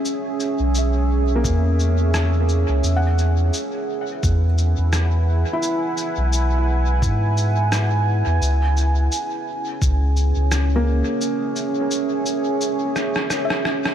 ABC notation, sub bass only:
X:1
M:4/4
L:1/16
Q:"Swing 16ths" 1/4=86
K:Elyd
V:1 name="Sub bass" clef=bass
z3 B,,,4- B,,, E,,6- E,, C,, | E,,4 z4 E,,3 E,,4 z | z3 B,,,4- B,,, G,,6- G,, E,, | C,,4 z4 C,,3 C,,4 z |
z16 |]